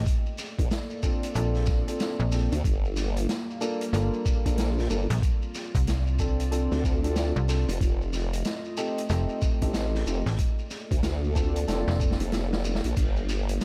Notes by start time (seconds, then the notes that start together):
0.06 A#3 A4 D5, kick, closed hi-hat, shekere
0.26 shekere
0.38 snare, shekere
0.59 A#1, kick, closed hi-hat, shekere
0.71 snare, closed hi-hat, shekere
0.91 shekere
1.03 C4 D4 F4 A4, kick, shekere
1.23 closed hi-hat, shekere
1.35 A#1 C4 D4 F4 A4, closed hi-hat, shekere
1.55 snare, shekere
1.66 kick, snare, shekere
1.87 C4 D4 F4 A4, closed hi-hat, shekere
2.00 snare, closed hi-hat, shekere
2.20 A#1, shekere
2.32 C4 D4 F4 A4, snare, shekere
2.52 D2, closed hi-hat, shekere
2.64 G1 G3 A#3 F4, kick, closed hi-hat, shekere
2.85 shekere
2.96 snare, shekere
3.17 closed hi-hat, shekere
3.29 snare, closed hi-hat, shekere
3.50 shekere
3.61 A#3 D4 F4 A4, shekere
3.81 closed hi-hat, shekere
3.93 G1 A#3 D4 F4 A4, snare, closed hi-hat, shekere
4.13 shekere
4.26 kick, shekere
4.45 A#1 A#3 D4 F4 A4, kick, closed hi-hat, shekere
4.58 snare, closed hi-hat, shekere
4.78 snare, shekere
4.90 G1 A#3 D4 F4 A4, shekere
5.10 A#1, snare, closed hi-hat, shekere
5.22 C4 D5, kick, closed hi-hat, shekere
5.42 shekere
5.55 snare, shekere
5.75 C2, kick, closed hi-hat, shekere
5.87 snare, closed hi-hat, shekere
6.07 shekere
6.19 C4 D4 F4 A4, kick, shekere
6.40 closed hi-hat, shekere
6.51 C4 D4 F4 A4, closed hi-hat, shekere
6.71 D2, snare, shekere
6.83 kick, snare, shekere
7.04 C4 D4 F4 A4, closed hi-hat, shekere
7.16 snare, closed hi-hat, shekere
7.36 C2, shekere
7.48 C4 D4 F4 A4, snare, shekere
7.68 F1, closed hi-hat, shekere
7.81 F1 A3 D#5, kick, closed hi-hat, shekere
8.01 shekere
8.13 snare, shekere
8.33 closed hi-hat, shekere
8.45 snare, closed hi-hat, shekere
8.65 shekere
8.77 C4 D#4 G4 A4, shekere
8.98 closed hi-hat, shekere
9.09 F1 C4 D#4 G4 A4, snare, closed hi-hat, shekere
9.29 shekere
9.42 kick, shekere
9.62 A1 C4 D#4 G4 A4, kick, closed hi-hat, shekere
9.74 snare, closed hi-hat, shekere
9.95 snare, shekere
10.06 F1 C4 D#4 G4 A4, shekere
10.26 A1, snare, shekere
10.38 A#3 A4 D5, kick, closed hi-hat, shekere
10.58 shekere
10.71 snare, shekere
10.91 D2, kick, closed hi-hat, shekere
11.03 D2, snare, closed hi-hat, shekere
11.24 shekere
11.35 C4 D4 F4 A4, kick, shekere
11.56 closed hi-hat, shekere
11.68 F1 C4 D4 F4 A4, snare, closed hi-hat, shekere
11.88 F1, snare, shekere
12.00 C4 D4 F4 A4, kick, shekere
12.11 snare
12.20 F1, closed hi-hat, shekere
12.32 snare, closed hi-hat, shekere
12.53 snare, shekere
12.64 shekere
12.75 snare
12.84 A#1, closed hi-hat, shekere
12.96 G1 G3 A#3 F4, kick, closed hi-hat, crash, shekere
13.17 shekere
13.29 snare, shekere
13.48 closed hi-hat, shekere
13.61 snare, closed hi-hat, shekere